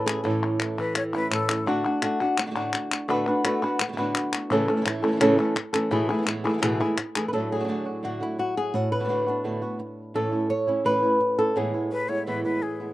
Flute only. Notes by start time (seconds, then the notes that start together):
0.79 B4
0.97 C#5
1.15 B4
1.33 A4
11.92 B4
12.09 C#5
12.27 B4
12.44 B4
12.62 G#4